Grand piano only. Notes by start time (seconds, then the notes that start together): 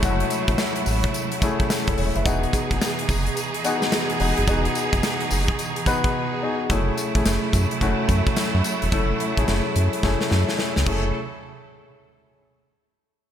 Already playing: A3 C#4 E4 G#4
0.03 G#3 C#4 E4 F#4
0.10 A3
1.42 A3 C#4 E4 G#4
1.88 E4 A4
1.98 G#4 C#5
2.16 B4 E5
2.25 B3 D#4 F#4 G#4
3.64 B3 D#4 F#4 G#4
4.20 B3 D#4 F#4 G#4
4.48 B3 D#4 F#4 G#4
5.86 B3 D#4 F#4 B4
6.43 B3 D#4 F#4 G#4
6.70 A3 C#4 E4 G#4
7.16 A3 C#4 E4 G#4
7.81 A3 C#4 E4 F#4
8.92 A3 C#4 E4 A4
9.37 A3 C#4 E4 G#4
10.03 A3 C#4 E4 G#4
10.87 A3 C#4 E4 G#4